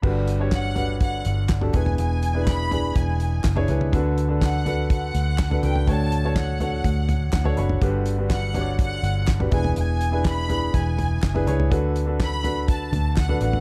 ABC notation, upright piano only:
X:1
M:4/4
L:1/16
Q:1/4=123
K:Glyd
V:1 name="Upright piano"
[DFGB]2 z [DFGc]2 z [DFGB]4- [DFGB] z2 [DFGA] [DE^GB]2- | [DE^GB]2 z [DEGB]2 z [DEGB]4- [DEGB] z2 [DEGc] [DEGB] z | [DFAB]2 z [DFAB]2 z [DFAB]4- [DFAB] z2 [DFAB] [DFAB] z | [DFAc]2 z [DFAc]2 z [DFAc]4- [DFAc] z2 [DFAc] [DFAc] z |
[DFGB]2 z [DFGB]2 z [DFGcd]4- [DFGcd] z2 [DFGB] [DE^GB]2- | [DE^GB]2 z [DEGB]2 z [DEGB]4- [DEGB] z2 [DEGB] [DEGc] z | [DFAB]2 z [DFAB]2 z [DFAB]4- [DFAB] z2 [DFAB] [DFAB] z |]
V:2 name="Upright piano" clef=bass
[G,,D,]6 z8 B,,2- | B,,4 z12 | D,6 z8 z2 | A,,6 z6 f2 b2 |
[G,,D,]6 z8 B,,2- | B,,4 z12 | D,6 z8 z2 |]